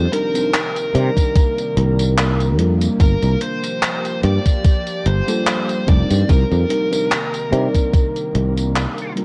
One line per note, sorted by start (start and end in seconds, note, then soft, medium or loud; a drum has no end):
0.00 2.97 C3 medium
0.00 2.97 D#3 medium
0.00 6.25 A#3 medium
0.00 0.13 C5 loud
0.12 0.31 G3 medium
0.12 0.31 C4 medium
0.12 0.31 D4 medium
0.12 0.32 D#4 medium
0.12 2.55 A#4 medium
0.12 0.32 A#4 loud
0.12 closed hi-hat medium
0.34 0.54 G3 medium
0.34 0.54 C4 medium
0.34 0.54 D4 medium
0.34 0.54 D#4 medium
0.34 0.54 A#4 loud
0.34 closed hi-hat soft
0.34 tambourine medium
0.54 clap loud
0.54 closed hi-hat medium
0.54 tambourine soft
0.76 closed hi-hat soft
0.76 tambourine soft
0.93 1.09 C3 loud
0.93 2.55 G3 medium
0.93 2.55 C4 medium
0.93 2.55 D4 medium
0.93 2.56 D#4 medium
0.93 2.56 D5 medium
0.93 closed hi-hat medium
1.17 kick medium
1.17 closed hi-hat medium
1.17 tambourine medium
1.36 kick loud
1.36 closed hi-hat medium
1.36 tambourine soft
1.58 closed hi-hat soft
1.58 tambourine soft
1.77 2.59 C2 medium
1.77 closed hi-hat medium
1.99 closed hi-hat medium
1.99 tambourine medium
2.18 clap loud
2.18 closed hi-hat medium
2.18 tambourine soft
2.40 closed hi-hat soft
2.40 tambourine soft
2.57 2.87 F2 medium
2.57 5.22 G3 medium
2.57 5.22 A#3 medium
2.57 5.22 D4 medium
2.57 5.23 F4 medium
2.57 5.23 A#4 medium
2.57 closed hi-hat medium
2.81 closed hi-hat medium
2.81 tambourine medium
2.99 3.15 G1 loud
2.99 6.25 F3 medium
2.99 6.25 G4 medium
2.99 3.42 A#4 medium
2.99 kick loud
2.99 closed hi-hat medium
2.99 tambourine soft
3.23 3.35 C2 medium
3.23 closed hi-hat soft
3.23 tambourine soft
3.41 4.20 C5 loud
3.41 closed hi-hat medium
3.64 closed hi-hat soft
3.64 tambourine medium
3.83 clap loud
3.83 closed hi-hat medium
3.83 tambourine soft
4.05 closed hi-hat soft
4.05 tambourine soft
4.23 4.38 G2 loud
4.23 5.09 D5 loud
4.23 closed hi-hat medium
4.46 kick medium
4.46 closed hi-hat soft
4.46 tambourine medium
4.65 kick loud
4.65 closed hi-hat medium
4.65 tambourine soft
4.87 closed hi-hat soft
4.87 tambourine soft
5.06 5.20 G1 loud
5.06 5.91 C5 loud
5.06 closed hi-hat medium
5.27 5.83 G3 medium
5.27 5.83 A#3 medium
5.27 5.83 D4 medium
5.27 5.84 F4 medium
5.27 5.84 A4 loud
5.27 closed hi-hat soft
5.27 tambourine medium
5.47 clap loud
5.47 closed hi-hat medium
5.47 tambourine soft
5.69 closed hi-hat soft
5.69 tambourine soft
5.86 6.02 F1 loud
5.86 6.65 G3 medium
5.86 6.65 C4 medium
5.86 6.65 D4 medium
5.86 6.65 D#4 medium
5.86 6.66 A#4 loud
5.86 6.31 D5 loud
5.86 kick loud
5.86 closed hi-hat medium
6.10 6.22 G2 loud
6.10 closed hi-hat soft
6.10 tambourine medium
6.29 6.43 C2 loud
6.29 9.25 C3 medium
6.29 9.25 D#3 medium
6.29 9.25 A#3 medium
6.29 9.13 A#4 medium
6.29 kick loud
6.29 closed hi-hat medium
6.29 tambourine soft
6.51 6.64 F2 loud
6.51 closed hi-hat soft
6.51 tambourine soft
6.69 6.88 G3 medium
6.69 6.89 C4 medium
6.69 6.89 D4 medium
6.69 6.89 D#4 medium
6.69 6.89 A#4 loud
6.69 closed hi-hat medium
6.91 7.11 G3 medium
6.91 7.11 C4 medium
6.91 7.12 D4 medium
6.91 7.12 D#4 medium
6.91 7.12 A#4 loud
6.91 closed hi-hat soft
6.91 tambourine medium
7.11 clap loud
7.11 closed hi-hat medium
7.11 tambourine soft
7.34 closed hi-hat soft
7.34 tambourine soft
7.50 7.67 C3 loud
7.50 9.12 G3 medium
7.50 9.12 C4 medium
7.50 9.13 D4 medium
7.50 9.13 D#4 medium
7.50 9.13 D5 medium
7.50 closed hi-hat medium
7.75 kick medium
7.75 closed hi-hat medium
7.75 tambourine medium
7.93 kick loud
7.93 closed hi-hat medium
7.93 tambourine soft
8.16 closed hi-hat soft
8.16 tambourine soft
8.35 8.85 C2 medium
8.35 closed hi-hat medium
8.57 closed hi-hat medium
8.57 tambourine medium
8.76 clap loud
8.76 closed hi-hat medium
8.76 tambourine soft
8.98 closed hi-hat soft
8.98 tambourine soft
9.15 9.25 G3 medium
9.15 9.25 A#3 medium
9.15 9.25 D4 medium
9.15 9.25 F4 medium
9.15 9.25 A#4 medium
9.15 closed hi-hat medium